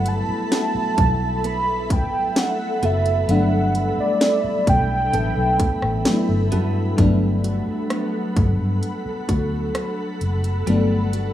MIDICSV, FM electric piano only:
0, 0, Header, 1, 2, 480
1, 0, Start_track
1, 0, Key_signature, 1, "major"
1, 0, Tempo, 923077
1, 1709, Time_signature, 4, 2, 24, 8
1, 5893, End_track
2, 0, Start_track
2, 0, Title_t, "FM electric piano"
2, 0, Program_c, 0, 5
2, 0, Control_c, 0, 64, 127
2, 0, Note_on_c, 0, 54, 65
2, 0, Note_on_c, 0, 57, 63
2, 0, Note_on_c, 0, 59, 60
2, 0, Note_on_c, 0, 64, 76
2, 1687, Note_off_c, 0, 54, 0
2, 1690, Note_off_c, 0, 57, 0
2, 1692, Note_off_c, 0, 59, 0
2, 1695, Note_off_c, 0, 64, 0
2, 1705, Note_on_c, 0, 54, 71
2, 1711, Note_on_c, 0, 57, 58
2, 1715, Note_on_c, 0, 59, 65
2, 1722, Note_on_c, 0, 62, 78
2, 3127, Note_off_c, 0, 54, 0
2, 3129, Note_off_c, 0, 57, 0
2, 3132, Note_off_c, 0, 59, 0
2, 3135, Note_off_c, 0, 62, 0
2, 3148, Note_on_c, 0, 54, 59
2, 3151, Note_on_c, 0, 57, 56
2, 3153, Note_on_c, 0, 59, 52
2, 3156, Note_on_c, 0, 62, 54
2, 3186, Note_off_c, 0, 62, 0
2, 3189, Note_on_c, 0, 64, 66
2, 3616, Note_off_c, 0, 54, 0
2, 3622, Note_off_c, 0, 57, 0
2, 3622, Note_on_c, 0, 54, 77
2, 3627, Note_off_c, 0, 59, 0
2, 3628, Note_on_c, 0, 57, 68
2, 3633, Note_on_c, 0, 59, 70
2, 3637, Control_c, 0, 64, 0
2, 3638, Note_on_c, 0, 62, 84
2, 3649, Note_off_c, 0, 64, 0
2, 3726, Control_c, 0, 64, 127
2, 5525, Note_off_c, 0, 54, 0
2, 5528, Note_off_c, 0, 57, 0
2, 5531, Note_off_c, 0, 59, 0
2, 5533, Note_off_c, 0, 62, 0
2, 5546, Note_on_c, 0, 54, 71
2, 5551, Note_on_c, 0, 57, 69
2, 5557, Note_on_c, 0, 59, 66
2, 5562, Note_on_c, 0, 62, 80
2, 5893, Note_off_c, 0, 54, 0
2, 5893, Note_off_c, 0, 57, 0
2, 5893, Note_off_c, 0, 59, 0
2, 5893, Note_off_c, 0, 62, 0
2, 5893, End_track
0, 0, End_of_file